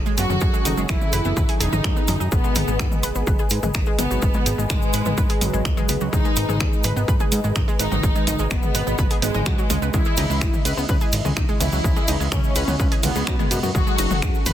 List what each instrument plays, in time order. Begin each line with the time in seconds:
Already playing: analog synth pad F#3 C#4 G#4 A4
0.06 synth arpeggio sound G#3 G#4, cabasa
0.18 analog synth bass F#1, analog polysynth F#3 F#4, synth arpeggio sound B3 B4, violin section F#4, open hi-hat, cabasa
0.30 analog synth bass F#1, synth arpeggio sound F#3 F#4, mid tom, cabasa
0.41 analog synth bass F#1, synth arpeggio sound G#3 G#4, kick, cabasa
0.54 synth arpeggio sound G#3 G#4, cabasa
0.65 analog synth bass F#1, synth arpeggio sound D#4 D#5, open hi-hat, mid tom, cabasa
0.77 analog synth bass F#1, synth arpeggio sound G#3 G#4, cabasa
0.89 analog synth bass F#1, synth arpeggio sound D#3 D#4, analog polysynth E3 E4, violin section E4, finger snap, kick, cabasa
1.01 mid tom, cabasa
1.13 analog synth bass F#1, synth arpeggio sound B4 B5, open hi-hat, cabasa
1.25 analog synth bass F#1, synth arpeggio sound B3 B4, cabasa
1.37 analog synth bass G#1, synth arpeggio sound B4 B5, kick, mid tom, cabasa
1.49 synth arpeggio sound G#4 G#5, open hi-hat, cabasa
1.60 analog synth bass E1, analog polysynth D#3 D#4, violin section D#4, synth arpeggio sound G#4 G#5, open hi-hat, cabasa
1.73 analog synth bass G#1, synth arpeggio sound D#4 D#5, mid tom, cabasa
1.84 analog synth bass F#2, synth arpeggio sound G#3 G#4, finger snap, kick, cabasa
1.96 synth arpeggio sound B3 B4, cabasa
2.08 analog synth bass F#2, synth arpeggio sound D#3 D#4, open hi-hat, mid tom, cabasa
2.20 analog synth bass F#2, synth arpeggio sound D#4 D#5, cabasa
2.32 analog synth bass G#1, analog polysynth B2 B3, synth arpeggio sound G#3 G#4, analog synth pad G#3 B4 D#5, violin section B3, kick, cabasa
2.44 synth arpeggio sound G#3 G#4, cabasa
2.55 analog synth bass G#1, synth arpeggio sound D#4 D#5, open hi-hat, mid tom, cabasa
2.68 analog synth bass G#1, synth arpeggio sound G#3 G#4, cabasa
2.79 analog synth bass G#2, synth arpeggio sound D#3 D#4, finger snap, kick, cabasa
2.92 mid tom, cabasa
3.03 analog synth bass G#1, synth arpeggio sound B4 B5, open hi-hat, cabasa
3.15 analog synth bass G#1, synth arpeggio sound B3 B4, cabasa
3.27 analog synth bass G#1, synth arpeggio sound B4 B5, kick, mid tom, cabasa
3.39 synth arpeggio sound G#4 G#5, cabasa
3.50 analog synth bass G#2, open hi-hat, cabasa
3.63 analog synth bass G#1, synth arpeggio sound G#3 G#4, mid tom, cabasa
3.74 analog synth bass G#1, synth arpeggio sound D#4 D#5, finger snap, kick, cabasa
3.86 synth arpeggio sound G#3 G#4, cabasa
3.98 analog synth bass G#1, analog polysynth B2 B3, synth arpeggio sound B3 B4, violin section B3, open hi-hat, mid tom, cabasa
4.11 analog synth bass G#1, synth arpeggio sound F#3 F#4, cabasa
4.22 analog synth bass G#1, synth arpeggio sound G#3 G#4, kick, cabasa
4.34 synth arpeggio sound G#3 G#4, mid tom, cabasa
4.46 analog synth bass G#1, synth arpeggio sound D#4 D#5, open hi-hat, cabasa
4.58 analog synth bass G#1, synth arpeggio sound G#3 G#4, cabasa
4.70 analog synth bass G#1, analog polysynth G#2 G#3, synth arpeggio sound D#3 D#4, violin section G#3, finger snap, kick, mid tom, cabasa
4.82 cabasa
4.93 analog synth bass G#1, synth arpeggio sound B4 B5, open hi-hat, cabasa
5.06 analog synth bass G#1, synth arpeggio sound B3 B4, mid tom, cabasa
5.17 analog synth bass G#1, synth arpeggio sound B4 B5, kick, cabasa
5.29 synth arpeggio sound G#4 G#5, open hi-hat, cabasa
5.41 analog synth bass G#1, analog polysynth F#2 F#3, open hi-hat, mid tom, cabasa
5.53 analog synth bass G#1, synth arpeggio sound G#3 G#4, cabasa
5.65 analog synth bass C#2, synth arpeggio sound D#4 D#5, finger snap, kick, cabasa
5.77 synth arpeggio sound G#3 G#4, mid tom, cabasa
5.89 analog synth bass C#2, synth arpeggio sound B3 B4, open hi-hat, cabasa
6.01 analog synth bass C#2, synth arpeggio sound F#3 F#4, cabasa
6.13 analog synth bass G#1, analog polysynth D#3 D#4, synth arpeggio sound G#3 G#4, violin section D#4, kick, mid tom, cabasa
6.25 synth arpeggio sound G#3 G#4, cabasa
6.36 analog synth bass G#1, synth arpeggio sound D#4 D#5, open hi-hat, cabasa
6.49 analog synth bass G#1, synth arpeggio sound G#3 G#4, mid tom, cabasa
6.60 analog synth bass G#2, synth arpeggio sound D#3 D#4, finger snap, kick, cabasa
6.73 cabasa
6.84 analog synth bass G#1, synth arpeggio sound B4 B5, open hi-hat, mid tom, cabasa
6.96 analog synth bass G#1, synth arpeggio sound B3 B4, cabasa
7.08 analog synth bass G#1, synth arpeggio sound B4 B5, kick, cabasa
7.20 synth arpeggio sound G#4 G#5, mid tom, cabasa
7.32 analog synth bass G#2, open hi-hat, cabasa
7.44 analog synth bass G#1, synth arpeggio sound G#3 G#4, cabasa
7.56 analog synth bass G#1, synth arpeggio sound D#4 D#5, finger snap, kick, mid tom, cabasa
7.68 synth arpeggio sound G#3 G#4, cabasa
7.79 analog synth bass G#1, analog polysynth D#3 D#4, synth arpeggio sound B3 B4, violin section D#4, open hi-hat, cabasa
7.92 analog synth bass G#1, synth arpeggio sound F#3 F#4, mid tom, cabasa
8.03 analog synth bass G#1, synth arpeggio sound G#3 G#4, kick, cabasa
8.15 synth arpeggio sound G#3 G#4, cabasa
8.27 analog synth bass G#1, synth arpeggio sound D#4 D#5, open hi-hat, mid tom, cabasa
8.39 analog synth bass G#1, synth arpeggio sound G#3 G#4, cabasa
8.51 analog synth bass G#1, analog polysynth B2 B3, synth arpeggio sound D#3 D#4, violin section B3, finger snap, kick, cabasa
8.63 mid tom, cabasa
8.75 analog synth bass G#1, synth arpeggio sound B4 B5, open hi-hat, cabasa
8.87 analog synth bass G#1, synth arpeggio sound B3 B4, cabasa
8.98 analog synth bass G#1, synth arpeggio sound B4 B5, kick, mid tom, cabasa
9.11 synth arpeggio sound G#4 G#5, open hi-hat, cabasa
9.22 analog synth bass G#1, analog polysynth G#2 G#3, violin section G#3, synth arpeggio sound B3 B4, open hi-hat, cabasa
9.34 analog synth bass G#1, synth arpeggio sound D#4 D#5, mid tom, cabasa
9.46 analog synth bass C#2, synth arpeggio sound F#3 F#4, finger snap, kick, cabasa
9.58 synth arpeggio sound F#3 F#4, cabasa
9.70 analog synth bass C#2, synth arpeggio sound G#3 G#4, open hi-hat, mid tom, cabasa
9.82 analog synth bass C#2, synth arpeggio sound B3 B4, cabasa
9.94 analog synth bass C#2, analog synth pad C#3 E4, analog polysynth E3 E4, synth arpeggio sound G#3 G#4, violin section E4, kick, cabasa
10.05 synth arpeggio sound G#3 G#4, cabasa
10.17 analog synth bass C#2, synth arpeggio sound D#4 D#5, open hi-hat, mid tom, ride, cabasa
10.30 analog synth bass C#2, synth arpeggio sound G#3 G#4, cabasa
10.41 analog synth bass G#1, synth arpeggio sound D#3 D#4, finger snap, kick, cabasa
10.54 mid tom, cabasa
10.65 analog synth bass C#2, synth arpeggio sound B4 B5, open hi-hat, ride, cabasa
10.77 analog synth bass C#2, synth arpeggio sound B3 B4, cabasa
10.89 analog synth bass C#2, synth arpeggio sound B4 B5, kick, mid tom, cabasa
11.01 synth arpeggio sound G#4 G#5, cabasa
11.12 analog synth bass G#1, open hi-hat, ride, cabasa
11.25 analog synth bass C#2, synth arpeggio sound G#3 G#4, mid tom, cabasa
11.37 analog synth bass C#2, synth arpeggio sound D#4 D#5, finger snap, kick, cabasa
11.49 synth arpeggio sound G#3 G#4, cabasa
11.60 analog synth bass C#2, analog polysynth E3 E4, synth arpeggio sound B3 B4, violin section E4, open hi-hat, mid tom, ride, cabasa
11.72 analog synth bass C#2, synth arpeggio sound F#3 F#4, cabasa
11.84 analog synth bass C#2, synth arpeggio sound G#3 G#4, kick, cabasa
11.96 synth arpeggio sound G#3 G#4, mid tom, cabasa
12.08 analog synth bass C#2, synth arpeggio sound D#4 D#5, open hi-hat, ride, cabasa
12.20 analog synth bass C#2, synth arpeggio sound G#3 G#4, cabasa
12.32 analog synth bass C#2, analog polysynth C#3 C#4, synth arpeggio sound D#3 D#4, violin section C#4, finger snap, kick, mid tom, cabasa
12.44 cabasa
12.56 analog synth bass C#2, synth arpeggio sound B4 B5, open hi-hat, ride, cabasa
12.68 analog synth bass C#2, synth arpeggio sound B3 B4, mid tom, cabasa
12.79 analog synth bass C#2, synth arpeggio sound B4 B5, kick, cabasa
12.92 synth arpeggio sound G#4 G#5, open hi-hat, cabasa
13.03 analog synth bass C#2, analog polysynth B2 B3, violin section B3, open hi-hat, mid tom, ride, cabasa
13.15 analog synth bass C#2, synth arpeggio sound G#3 G#4, cabasa
13.27 analog synth bass F#2, synth arpeggio sound D#4 D#5, finger snap, kick, cabasa
13.39 synth arpeggio sound G#3 G#4, mid tom, cabasa
13.51 analog synth bass F#2, synth arpeggio sound B3 B4, open hi-hat, ride, cabasa
13.63 analog synth bass F#2, synth arpeggio sound F#3 F#4, cabasa
13.75 analog synth bass F#1, analog polysynth F#3 F#4, analog synth pad F#3 C#4 G#4 A4, synth arpeggio sound G#3 G#4, violin section F#4, kick, mid tom, cabasa
13.87 synth arpeggio sound G#3 G#4, cabasa
13.98 analog synth bass F#1, synth arpeggio sound D#4 D#5, open hi-hat, ride, cabasa
14.11 analog synth bass F#1, synth arpeggio sound G#3 G#4, mid tom, cabasa
14.22 analog synth bass F#2, synth arpeggio sound D#3 D#4, finger snap, kick, cabasa
14.35 cabasa
14.46 analog synth bass F#1, synth arpeggio sound B4 B5, open hi-hat, mid tom, ride, cabasa